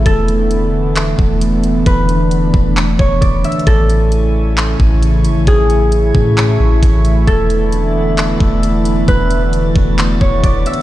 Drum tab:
HH |x--x--x-----x-----x--x--|x--x--x-----x-----x--xxx|x--x--x-----x-----x--x--|x--x--x-----x-----x--x--|
CP |------------x-----------|------------x-----------|------------x-----------|------------x-----------|
BD |o--------------o--------|o--------o-----o--o-----|o--------------o--------|o--------o--------o-----|

HH |x--x--x-----x-----x--x--|x--x--x-----x-----x--xx-|
CP |------------x-----------|------------x-----------|
BD |o--------------o--------|o--------o-----o--o-----|